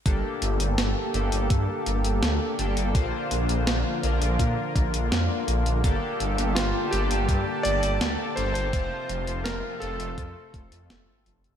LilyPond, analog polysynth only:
\new Staff \with { instrumentName = "Analog polysynth" } { \time 4/4 \key g \minor \tempo 4 = 83 <bes d' g' a'>4. <bes d' g' a'>2 <bes d' g' a'>8 | <bes d' f' c''>4. <bes d' f' bes'>2~ <bes d' f' bes'>8 | <bes d' g' a'>4. <bes d' g' a'>2 <bes d' g' a'>8 | <f c' f' c''>4. <a c' f' a'>2~ <a c' f' a'>8 | }